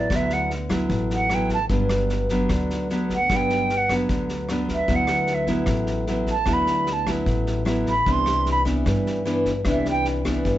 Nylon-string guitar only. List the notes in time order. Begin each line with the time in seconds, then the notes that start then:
0.11 D3 F#3 B3 E4
0.69 F#3 B3 E4
0.91 A2
1.31 F#3 B3 E4
1.70 G2 F#3 B3 D4
2.31 F#3 B3 D4
2.51 D3
2.91 F#3 B3 D4
3.31 G2 F#3 B3 D4
3.91 F#3 B3 D4
4.10 D3
4.50 F#3 B3 D4
4.88 D3 F#3 B3 E4
5.47 F#3 B3 E4
5.67 A2
6.07 F#3 B3 E4
6.46 D3 F#3 B3 E4
7.07 F#3 B3 E4
7.27 A2
7.65 F#3 B3 E4
8.07 C3 E3 B3 D4
8.65 E3 B3 D4
8.85 G2
9.25 E3 B3 D4
9.65 C3 E3 B3 D4
10.25 E3 B3 D4
10.46 G2